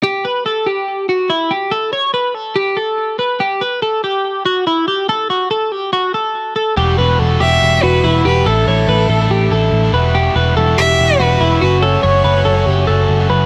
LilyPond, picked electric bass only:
\new Staff \with { instrumentName = "Picked electric bass" } { \clef bass \time 4/4 \key e \dorian \tempo 4 = 142 r1 | r1 | r1 | r1 |
e,,8 e,,8 e,,8 e,,8 e,,8 e,,8 e,,8 e,,8 | a,,8 a,,8 a,,8 a,,8 a,,8 a,,8 a,,8 e,,8~ | e,,8 e,,8 e,,8 e,,8 e,,8 e,,8 e,,8 fis,,8~ | fis,,8 fis,,8 fis,,8 fis,,8 fis,,8 fis,,8 fis,,8 fis,,8 | }